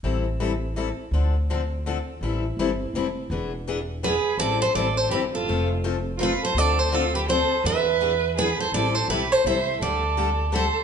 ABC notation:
X:1
M:3/4
L:1/16
Q:"Swing" 1/4=166
K:Am
V:1 name="Steel-string acoustic guitar"
z12 | z12 | z12 | z8 B4 |
d2 c2 d2 c2 B2 A2- | A2 z4 z3/2 _B/2 =B2 c2 | d2 c2 A2 B2 c4 | e8 B2 c2 |
d2 c2 B2 c2 e4 | d8 c4 |]
V:2 name="Violin"
z12 | z12 | z12 | z8 ^G4 |
A2 A2 A2 A2 G2 F2- | F2 z4 z3/2 F/2 F2 A2 | A2 A2 F2 G2 A4 | B8 ^G2 A2 |
A2 A2 G2 A2 c4 | A8 A4 |]
V:3 name="Steel-string acoustic guitar"
[E,G,CEA]2 z2 [E,G,CEA] z3 [E,G,CEA] z3 | [D,F,CDA]2 z2 [D,F,CDA] z3 [D,F,CDA] z3 | [E,G,CEA]2 z2 [E,G,CEA] z3 [E,G,CEA] z3 | [E,B,D^G]2 z2 [E,B,DG] z3 [E,B,DG] z3 |
[E,G,CEA]2 z2 [E,G,CEA] z3 [E,G,CEA] z3 | [F,A,CFA]2 z2 [F,A,CFA] z3 [F,A,CFA] z3 | [D,F,CDA]2 z2 [D,F,CDA] z3 [D,F,CDA] z3 | [E,B,D^G]2 z2 [E,B,DG] z3 [E,B,DG] z3 |
[E,G,CEA]2 z2 [E,G,CEA] z3 [E,G,CEA] z3 | [D,G,DGA]2 z2 [D,G,DGA] z3 [D,G,DGA] z3 |]
V:4 name="Upright bass" clef=bass
A,,,12 | D,,12 | A,,,4 G,,,4 F,,,4 | E,,,12 |
A,,,4 A,,,4 G,,,4 | F,,,12 | D,,12 | E,,12 |
A,,,4 B,,,4 C,,4 | D,,12 |]